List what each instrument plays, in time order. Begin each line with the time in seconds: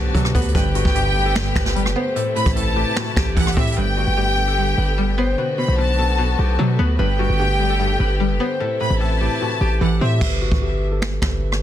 Already playing: 808-style bass B1, synth pluck B2, string section D3 A3 B3 F#4, harp G4 A4 B4, violin section A5
0.15 808-style bass B2, synth pluck F#3, harp A4, kick, closed hi-hat
0.25 cross-stick, closed hi-hat
0.35 808-style bass D2, synth pluck B3, harp B4, kick, closed hi-hat
0.41 closed hi-hat
0.48 closed hi-hat
0.55 808-style bass G1, synth pluck G2, string section A3 B3 G4, harp B4, violin section G5, kick, closed hi-hat
0.75 synth pluck G2, harp F#4, closed hi-hat
0.85 808-style bass G1, kick
0.95 synth pluck G2, harp G4, closed hi-hat
1.15 synth pluck G2
1.25 harp A4
1.35 synth pluck G2, finger snap, snare
1.56 808-style bass G1, harp B4, finger snap, kick, snare
1.66 snare
1.76 synth pluck G3, closed hi-hat
1.86 808-style bass F#1, cross-stick
1.95 synth pluck B3, harp C5
2.16 synth pluck A2, string section C3 E3 E4, harp A4, closed hi-hat
2.36 synth pluck A2, harp B4, violin section B5, closed hi-hat
2.46 808-style bass A1, kick, cross-stick, closed hi-hat
2.56 synth pluck A2, harp A4, violin section A5, closed hi-hat
2.76 synth pluck A2, harp G4
2.96 synth pluck A2, harp F#4, finger snap, snare
3.16 808-style bass A1, harp G4, finger snap, kick, snare
3.37 808-style bass A1, synth pluck E3, harp A4, violin section F#5, kick, closed hi-hat
3.42 closed hi-hat
3.47 cross-stick, closed hi-hat
3.52 closed hi-hat
3.57 808-style bass A2, synth pluck C4, violin section E5, kick, closed hi-hat
3.62 closed hi-hat
3.67 closed hi-hat
3.72 closed hi-hat
3.77 808-style bass G1, synth pluck G2, string section D3 A3 B3 G4, harp B4, violin section G5
3.97 synth pluck G2, harp F#4
4.07 808-style bass G1
4.17 synth pluck G2, harp G4
4.37 synth pluck G2
4.47 harp A4
4.57 synth pluck G2
4.78 808-style bass G1, harp B4
4.98 synth pluck G3
5.18 synth pluck B3, harp C5
5.38 synth pluck B2, string section A3 F#4, harp B4
5.58 synth pluck B2, harp C5, violin section B5
5.68 808-style bass B1
5.78 synth pluck B2, harp B4, violin section A5
5.98 synth pluck B2, harp A4
6.18 synth pluck B2, harp F#4
6.39 808-style bass B1, harp G4
6.59 808-style bass B2, synth pluck F#3, harp A4
6.79 808-style bass D2, synth pluck B3, harp B4
6.99 808-style bass G1, synth pluck G2, string section D3 G4, harp B4, violin section G5
7.19 synth pluck G2, harp F#4
7.29 808-style bass G1
7.39 synth pluck G2, harp G4
7.60 synth pluck G2
7.70 harp A4
7.80 synth pluck G2
8.00 808-style bass G1, harp B4
8.20 synth pluck G3
8.30 808-style bass F#1
8.40 synth pluck B3, harp C5
8.60 synth pluck A2, string section C3 E3 E4, harp A4
8.80 synth pluck A2, harp B4, violin section B5
8.90 808-style bass A1
9.00 synth pluck A2, harp A4, violin section A5
9.21 synth pluck A2, harp G4
9.41 synth pluck A2, harp F#4
9.61 808-style bass A1, harp G4
9.81 808-style bass A1, synth pluck E3, harp A4, violin section F#5
10.01 808-style bass A2, synth pluck C4, violin section E5
10.21 808-style bass G1, harp B4, kick, crash
10.42 harp F#4
10.52 808-style bass G1, kick
10.62 harp G4
10.92 harp A4
11.02 finger snap, snare
11.22 808-style bass G1, harp B4, finger snap, kick, snare
11.52 cross-stick